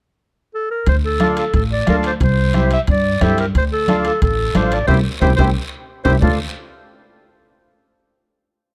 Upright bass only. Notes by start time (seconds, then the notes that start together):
0.87 D2
1.54 A1
1.87 D2
2.21 C2
2.88 G2
3.22 G2
3.55 D2
4.22 A1
4.55 A1
4.89 C2
5.22 C2
5.38 C2
6.06 C2
6.22 D2